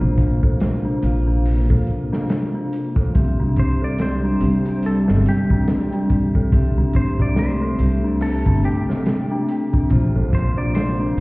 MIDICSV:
0, 0, Header, 1, 7, 480
1, 0, Start_track
1, 0, Tempo, 845070
1, 1787, Time_signature, 4, 2, 24, 8
1, 6363, End_track
2, 0, Start_track
2, 0, Title_t, "Clean electric guitar"
2, 0, Program_c, 0, 27
2, 2042, Note_on_c, 0, 72, 98
2, 2178, Note_off_c, 0, 72, 0
2, 2182, Note_on_c, 0, 74, 102
2, 2268, Note_off_c, 0, 74, 0
2, 2281, Note_on_c, 0, 72, 108
2, 2731, Note_off_c, 0, 72, 0
2, 2762, Note_on_c, 0, 69, 88
2, 2825, Note_off_c, 0, 69, 0
2, 3002, Note_on_c, 0, 67, 78
2, 3452, Note_off_c, 0, 67, 0
2, 3955, Note_on_c, 0, 72, 103
2, 4081, Note_off_c, 0, 72, 0
2, 4100, Note_on_c, 0, 74, 99
2, 4187, Note_off_c, 0, 74, 0
2, 4197, Note_on_c, 0, 72, 103
2, 4671, Note_on_c, 0, 69, 95
2, 4686, Note_off_c, 0, 72, 0
2, 4911, Note_off_c, 0, 69, 0
2, 4913, Note_on_c, 0, 67, 79
2, 5367, Note_off_c, 0, 67, 0
2, 5877, Note_on_c, 0, 72, 97
2, 6003, Note_off_c, 0, 72, 0
2, 6009, Note_on_c, 0, 74, 100
2, 6103, Note_off_c, 0, 74, 0
2, 6105, Note_on_c, 0, 72, 119
2, 6363, Note_off_c, 0, 72, 0
2, 6363, End_track
3, 0, Start_track
3, 0, Title_t, "Vibraphone"
3, 0, Program_c, 1, 11
3, 0, Control_c, 1, 64, 127
3, 0, Note_on_c, 1, 58, 84
3, 0, Note_on_c, 1, 65, 77
3, 0, Note_on_c, 1, 72, 98
3, 562, Note_off_c, 1, 58, 0
3, 565, Note_off_c, 1, 65, 0
3, 569, Note_off_c, 1, 72, 0
3, 584, Note_on_c, 1, 58, 80
3, 589, Note_on_c, 1, 65, 69
3, 597, Note_on_c, 1, 77, 85
3, 1762, Note_off_c, 1, 58, 0
3, 1764, Note_off_c, 1, 65, 0
3, 1768, Note_off_c, 1, 77, 0
3, 1783, Note_on_c, 1, 60, 84
3, 1787, Note_on_c, 1, 67, 79
3, 1794, Control_c, 1, 64, 0
3, 1796, Note_on_c, 1, 76, 90
3, 1888, Control_c, 1, 64, 127
3, 2481, Note_off_c, 1, 60, 0
3, 2483, Note_off_c, 1, 67, 0
3, 2488, Note_off_c, 1, 76, 0
3, 2502, Note_on_c, 1, 60, 77
3, 2509, Note_on_c, 1, 67, 70
3, 2517, Note_on_c, 1, 76, 88
3, 3681, Note_off_c, 1, 60, 0
3, 3684, Note_off_c, 1, 67, 0
3, 3688, Note_off_c, 1, 76, 0
3, 3705, Note_on_c, 1, 60, 86
3, 3711, Note_on_c, 1, 67, 77
3, 3719, Note_on_c, 1, 76, 97
3, 4402, Note_off_c, 1, 60, 0
3, 4405, Note_off_c, 1, 67, 0
3, 4409, Note_off_c, 1, 76, 0
3, 4423, Note_on_c, 1, 60, 76
3, 4430, Note_on_c, 1, 67, 68
3, 4437, Note_on_c, 1, 76, 90
3, 5601, Note_off_c, 1, 60, 0
3, 5605, Note_off_c, 1, 67, 0
3, 5608, Note_off_c, 1, 76, 0
3, 5624, Note_on_c, 1, 58, 92
3, 5633, Note_on_c, 1, 65, 77
3, 5635, Control_c, 1, 64, 0
3, 5638, Note_on_c, 1, 72, 93
3, 5719, Control_c, 1, 64, 127
3, 6322, Note_off_c, 1, 58, 0
3, 6326, Note_off_c, 1, 65, 0
3, 6329, Note_off_c, 1, 72, 0
3, 6341, Note_on_c, 1, 58, 79
3, 6363, Note_off_c, 1, 58, 0
3, 6363, End_track
4, 0, Start_track
4, 0, Title_t, "Synth bell"
4, 0, Program_c, 2, 98
4, 0, Control_c, 2, 64, 127
4, 0, Note_on_c, 2, 62, 100
4, 0, Note_on_c, 2, 69, 77
4, 5, Note_off_c, 2, 62, 0
4, 5, Note_on_c, 2, 62, 100
4, 101, Note_off_c, 2, 62, 0
4, 242, Note_off_c, 2, 69, 0
4, 242, Note_on_c, 2, 69, 72
4, 471, Note_off_c, 2, 69, 0
4, 481, Note_on_c, 2, 62, 97
4, 710, Note_off_c, 2, 62, 0
4, 722, Note_on_c, 2, 62, 94
4, 819, Note_off_c, 2, 62, 0
4, 964, Note_on_c, 2, 69, 74
4, 1191, Note_off_c, 2, 69, 0
4, 1207, Note_on_c, 2, 62, 96
4, 1433, Note_off_c, 2, 62, 0
4, 1448, Note_on_c, 2, 62, 91
4, 1542, Note_off_c, 2, 62, 0
4, 1689, Note_on_c, 2, 69, 75
4, 1788, Note_off_c, 2, 69, 0
4, 1794, Control_c, 2, 64, 0
4, 1903, Control_c, 2, 64, 127
4, 1929, Note_on_c, 2, 62, 98
4, 2023, Note_off_c, 2, 62, 0
4, 2167, Note_on_c, 2, 69, 68
4, 2393, Note_off_c, 2, 69, 0
4, 2408, Note_on_c, 2, 62, 100
4, 2634, Note_off_c, 2, 62, 0
4, 2648, Note_on_c, 2, 62, 93
4, 2742, Note_off_c, 2, 62, 0
4, 2889, Note_on_c, 2, 69, 75
4, 3114, Note_off_c, 2, 69, 0
4, 3129, Note_on_c, 2, 62, 103
4, 3354, Note_off_c, 2, 62, 0
4, 3370, Note_on_c, 2, 62, 102
4, 3464, Note_off_c, 2, 62, 0
4, 3610, Note_on_c, 2, 69, 83
4, 3834, Note_off_c, 2, 69, 0
4, 3849, Note_on_c, 2, 62, 99
4, 4074, Note_off_c, 2, 62, 0
4, 4086, Note_on_c, 2, 62, 94
4, 4182, Note_off_c, 2, 62, 0
4, 4325, Note_on_c, 2, 69, 78
4, 4552, Note_off_c, 2, 69, 0
4, 4566, Note_on_c, 2, 62, 98
4, 4793, Note_off_c, 2, 62, 0
4, 4809, Note_on_c, 2, 62, 105
4, 4903, Note_off_c, 2, 62, 0
4, 5049, Note_on_c, 2, 69, 80
4, 5274, Note_off_c, 2, 69, 0
4, 5290, Note_on_c, 2, 62, 102
4, 5514, Note_off_c, 2, 62, 0
4, 5526, Note_on_c, 2, 62, 101
4, 5621, Note_off_c, 2, 62, 0
4, 5634, Control_c, 2, 64, 0
4, 5724, Control_c, 2, 64, 127
4, 5768, Note_on_c, 2, 69, 80
4, 5994, Note_off_c, 2, 69, 0
4, 6007, Note_on_c, 2, 62, 95
4, 6233, Note_off_c, 2, 62, 0
4, 6249, Note_on_c, 2, 62, 104
4, 6343, Note_off_c, 2, 62, 0
4, 6363, End_track
5, 0, Start_track
5, 0, Title_t, "Ambient pad"
5, 0, Program_c, 3, 92
5, 0, Note_on_c, 3, 48, 80
5, 0, Note_on_c, 3, 58, 71
5, 1766, Note_off_c, 3, 58, 0
5, 1788, Note_on_c, 3, 55, 69
5, 3688, Note_off_c, 3, 55, 0
5, 3702, Note_on_c, 3, 57, 73
5, 5606, Note_off_c, 3, 57, 0
5, 5630, Note_on_c, 3, 65, 87
5, 5631, Note_on_c, 3, 58, 76
5, 6363, Note_off_c, 3, 48, 0
5, 6363, Note_off_c, 3, 58, 0
5, 6363, Note_off_c, 3, 65, 0
5, 6363, End_track
6, 0, Start_track
6, 0, Title_t, "Upright bass"
6, 0, Program_c, 4, 32
6, 6, Note_on_c, 4, 34, 92
6, 567, Note_off_c, 4, 34, 0
6, 585, Note_on_c, 4, 34, 90
6, 965, Note_off_c, 4, 34, 0
6, 968, Note_on_c, 4, 46, 88
6, 1056, Note_off_c, 4, 46, 0
6, 1791, Note_on_c, 4, 36, 95
6, 1912, Note_off_c, 4, 36, 0
6, 1928, Note_on_c, 4, 36, 86
6, 2489, Note_off_c, 4, 36, 0
6, 2507, Note_on_c, 4, 36, 89
6, 2884, Note_off_c, 4, 36, 0
6, 2887, Note_on_c, 4, 31, 89
6, 2975, Note_off_c, 4, 31, 0
6, 3706, Note_on_c, 4, 36, 93
6, 3830, Note_off_c, 4, 36, 0
6, 3849, Note_on_c, 4, 36, 90
6, 4409, Note_off_c, 4, 36, 0
6, 4428, Note_on_c, 4, 36, 94
6, 4803, Note_off_c, 4, 36, 0
6, 4806, Note_on_c, 4, 31, 91
6, 4895, Note_off_c, 4, 31, 0
6, 5629, Note_on_c, 4, 34, 96
6, 5751, Note_off_c, 4, 34, 0
6, 5769, Note_on_c, 4, 34, 94
6, 6329, Note_off_c, 4, 34, 0
6, 6345, Note_on_c, 4, 34, 89
6, 6363, Note_off_c, 4, 34, 0
6, 6363, End_track
7, 0, Start_track
7, 0, Title_t, "Drums"
7, 101, Note_on_c, 9, 36, 86
7, 104, Note_on_c, 9, 42, 65
7, 158, Note_off_c, 9, 36, 0
7, 160, Note_off_c, 9, 42, 0
7, 245, Note_on_c, 9, 36, 109
7, 302, Note_off_c, 9, 36, 0
7, 342, Note_on_c, 9, 42, 89
7, 349, Note_on_c, 9, 38, 112
7, 399, Note_off_c, 9, 42, 0
7, 406, Note_off_c, 9, 38, 0
7, 583, Note_on_c, 9, 42, 70
7, 639, Note_off_c, 9, 42, 0
7, 825, Note_on_c, 9, 46, 84
7, 882, Note_off_c, 9, 46, 0
7, 967, Note_on_c, 9, 36, 102
7, 1024, Note_off_c, 9, 36, 0
7, 1063, Note_on_c, 9, 42, 64
7, 1119, Note_off_c, 9, 42, 0
7, 1210, Note_on_c, 9, 38, 48
7, 1267, Note_off_c, 9, 38, 0
7, 1303, Note_on_c, 9, 42, 83
7, 1307, Note_on_c, 9, 38, 96
7, 1360, Note_off_c, 9, 42, 0
7, 1364, Note_off_c, 9, 38, 0
7, 1550, Note_on_c, 9, 42, 67
7, 1607, Note_off_c, 9, 42, 0
7, 1682, Note_on_c, 9, 36, 109
7, 1739, Note_off_c, 9, 36, 0
7, 1788, Note_on_c, 9, 42, 82
7, 1791, Note_on_c, 9, 36, 112
7, 1845, Note_off_c, 9, 42, 0
7, 1848, Note_off_c, 9, 36, 0
7, 2023, Note_on_c, 9, 42, 63
7, 2029, Note_on_c, 9, 36, 78
7, 2080, Note_off_c, 9, 42, 0
7, 2086, Note_off_c, 9, 36, 0
7, 2263, Note_on_c, 9, 42, 93
7, 2271, Note_on_c, 9, 38, 97
7, 2320, Note_off_c, 9, 42, 0
7, 2327, Note_off_c, 9, 38, 0
7, 2502, Note_on_c, 9, 42, 73
7, 2559, Note_off_c, 9, 42, 0
7, 2645, Note_on_c, 9, 42, 49
7, 2701, Note_off_c, 9, 42, 0
7, 2742, Note_on_c, 9, 42, 82
7, 2799, Note_off_c, 9, 42, 0
7, 2886, Note_on_c, 9, 38, 52
7, 2942, Note_off_c, 9, 38, 0
7, 2986, Note_on_c, 9, 42, 72
7, 3042, Note_off_c, 9, 42, 0
7, 3125, Note_on_c, 9, 36, 86
7, 3182, Note_off_c, 9, 36, 0
7, 3224, Note_on_c, 9, 42, 83
7, 3226, Note_on_c, 9, 38, 107
7, 3281, Note_off_c, 9, 42, 0
7, 3282, Note_off_c, 9, 38, 0
7, 3364, Note_on_c, 9, 42, 44
7, 3421, Note_off_c, 9, 42, 0
7, 3463, Note_on_c, 9, 42, 67
7, 3465, Note_on_c, 9, 36, 87
7, 3520, Note_off_c, 9, 42, 0
7, 3522, Note_off_c, 9, 36, 0
7, 3607, Note_on_c, 9, 36, 93
7, 3664, Note_off_c, 9, 36, 0
7, 3705, Note_on_c, 9, 36, 110
7, 3706, Note_on_c, 9, 42, 85
7, 3762, Note_off_c, 9, 36, 0
7, 3762, Note_off_c, 9, 42, 0
7, 3938, Note_on_c, 9, 42, 60
7, 3947, Note_on_c, 9, 36, 94
7, 3995, Note_off_c, 9, 42, 0
7, 4004, Note_off_c, 9, 36, 0
7, 4087, Note_on_c, 9, 36, 106
7, 4144, Note_off_c, 9, 36, 0
7, 4182, Note_on_c, 9, 38, 107
7, 4184, Note_on_c, 9, 42, 84
7, 4238, Note_off_c, 9, 38, 0
7, 4241, Note_off_c, 9, 42, 0
7, 4423, Note_on_c, 9, 42, 72
7, 4480, Note_off_c, 9, 42, 0
7, 4661, Note_on_c, 9, 46, 80
7, 4718, Note_off_c, 9, 46, 0
7, 4806, Note_on_c, 9, 36, 88
7, 4863, Note_off_c, 9, 36, 0
7, 4909, Note_on_c, 9, 42, 64
7, 4966, Note_off_c, 9, 42, 0
7, 5055, Note_on_c, 9, 38, 44
7, 5111, Note_off_c, 9, 38, 0
7, 5145, Note_on_c, 9, 42, 87
7, 5150, Note_on_c, 9, 38, 113
7, 5202, Note_off_c, 9, 42, 0
7, 5207, Note_off_c, 9, 38, 0
7, 5387, Note_on_c, 9, 42, 66
7, 5444, Note_off_c, 9, 42, 0
7, 5530, Note_on_c, 9, 36, 94
7, 5587, Note_off_c, 9, 36, 0
7, 5623, Note_on_c, 9, 42, 88
7, 5627, Note_on_c, 9, 36, 107
7, 5680, Note_off_c, 9, 42, 0
7, 5684, Note_off_c, 9, 36, 0
7, 5868, Note_on_c, 9, 36, 100
7, 5869, Note_on_c, 9, 42, 63
7, 5924, Note_off_c, 9, 36, 0
7, 5925, Note_off_c, 9, 42, 0
7, 6105, Note_on_c, 9, 42, 98
7, 6113, Note_on_c, 9, 38, 108
7, 6162, Note_off_c, 9, 42, 0
7, 6170, Note_off_c, 9, 38, 0
7, 6363, End_track
0, 0, End_of_file